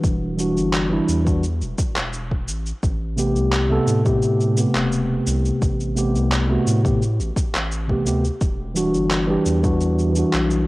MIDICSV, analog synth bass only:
0, 0, Header, 1, 2, 480
1, 0, Start_track
1, 0, Tempo, 697674
1, 26, Time_signature, 4, 2, 24, 8
1, 7343, End_track
2, 0, Start_track
2, 0, Title_t, "Analog synth bass"
2, 0, Program_c, 0, 38
2, 26, Note_on_c, 0, 28, 95
2, 391, Note_on_c, 0, 31, 98
2, 401, Note_off_c, 0, 28, 0
2, 685, Note_off_c, 0, 31, 0
2, 746, Note_on_c, 0, 40, 77
2, 1112, Note_on_c, 0, 28, 98
2, 1123, Note_off_c, 0, 40, 0
2, 1189, Note_off_c, 0, 28, 0
2, 1354, Note_on_c, 0, 28, 74
2, 1707, Note_on_c, 0, 33, 78
2, 1717, Note_off_c, 0, 28, 0
2, 1871, Note_off_c, 0, 33, 0
2, 1947, Note_on_c, 0, 33, 92
2, 2310, Note_on_c, 0, 36, 101
2, 2321, Note_off_c, 0, 33, 0
2, 2605, Note_off_c, 0, 36, 0
2, 2664, Note_on_c, 0, 45, 81
2, 3204, Note_off_c, 0, 45, 0
2, 3270, Note_on_c, 0, 28, 95
2, 3565, Note_off_c, 0, 28, 0
2, 3625, Note_on_c, 0, 36, 104
2, 3790, Note_off_c, 0, 36, 0
2, 3866, Note_on_c, 0, 33, 91
2, 4232, Note_on_c, 0, 36, 101
2, 4242, Note_off_c, 0, 33, 0
2, 4526, Note_off_c, 0, 36, 0
2, 4587, Note_on_c, 0, 45, 82
2, 4951, Note_on_c, 0, 33, 91
2, 4961, Note_off_c, 0, 45, 0
2, 5028, Note_off_c, 0, 33, 0
2, 5190, Note_on_c, 0, 33, 77
2, 5545, Note_on_c, 0, 38, 84
2, 5555, Note_off_c, 0, 33, 0
2, 5710, Note_off_c, 0, 38, 0
2, 5787, Note_on_c, 0, 28, 91
2, 6150, Note_on_c, 0, 31, 95
2, 6160, Note_off_c, 0, 28, 0
2, 6445, Note_off_c, 0, 31, 0
2, 6508, Note_on_c, 0, 40, 76
2, 7046, Note_off_c, 0, 40, 0
2, 7112, Note_on_c, 0, 35, 97
2, 7343, Note_off_c, 0, 35, 0
2, 7343, End_track
0, 0, End_of_file